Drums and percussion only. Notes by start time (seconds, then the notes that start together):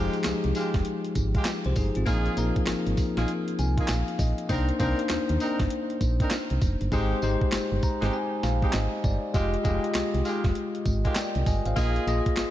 0.13 closed hi-hat
0.24 snare, clap, closed hi-hat, tambourine
0.44 closed hi-hat
0.55 open hi-hat, tambourine
0.74 kick, snare, closed hi-hat
0.85 closed hi-hat
1.05 closed hi-hat
1.15 kick, closed hi-hat, tambourine
1.35 kick, closed hi-hat
1.45 snare, clap, closed hi-hat, tambourine
1.64 closed hi-hat
1.76 kick, open hi-hat, tambourine
1.95 closed hi-hat
2.06 kick, closed hi-hat, tambourine
2.26 closed hi-hat
2.37 closed hi-hat, tambourine
2.56 kick, closed hi-hat
2.67 snare, clap, closed hi-hat, tambourine
2.87 closed hi-hat
2.97 kick, open hi-hat, tambourine
3.17 snare, closed hi-hat
3.28 closed hi-hat
3.48 closed hi-hat
3.59 closed hi-hat, tambourine
3.78 kick, closed hi-hat
3.88 snare, clap, closed hi-hat, tambourine
4.08 closed hi-hat
4.19 kick, open hi-hat, tambourine
4.38 closed hi-hat
4.49 kick, closed hi-hat, tambourine
4.69 closed hi-hat
4.79 kick, closed hi-hat, tambourine
4.99 closed hi-hat
5.09 snare, clap, closed hi-hat, tambourine
5.29 closed hi-hat
5.40 open hi-hat, tambourine
5.60 kick, snare, closed hi-hat
5.70 closed hi-hat
5.90 closed hi-hat
6.01 kick, closed hi-hat, tambourine
6.20 kick, closed hi-hat
6.31 snare, clap, closed hi-hat, tambourine
6.50 closed hi-hat
6.61 kick, open hi-hat, tambourine
6.81 closed hi-hat
6.92 kick, tambourine
7.22 tambourine
7.41 kick
7.52 snare, clap, tambourine
7.82 kick, tambourine
8.02 snare
8.43 snare, tambourine
8.62 kick
8.73 snare, clap, tambourine
9.04 kick, tambourine
9.34 kick, closed hi-hat, tambourine
9.54 closed hi-hat
9.65 kick, closed hi-hat, tambourine
9.84 closed hi-hat
9.95 snare, clap, closed hi-hat, tambourine
10.14 closed hi-hat
10.25 open hi-hat, tambourine
10.44 kick, snare, closed hi-hat
10.55 closed hi-hat
10.75 closed hi-hat
10.86 kick, closed hi-hat, tambourine
11.05 kick, closed hi-hat
11.15 snare, clap, closed hi-hat, tambourine
11.35 closed hi-hat
11.46 kick, open hi-hat, tambourine
11.65 closed hi-hat
11.76 kick, closed hi-hat, tambourine
11.96 closed hi-hat
12.07 closed hi-hat, tambourine
12.26 kick, closed hi-hat
12.37 snare, clap, closed hi-hat, tambourine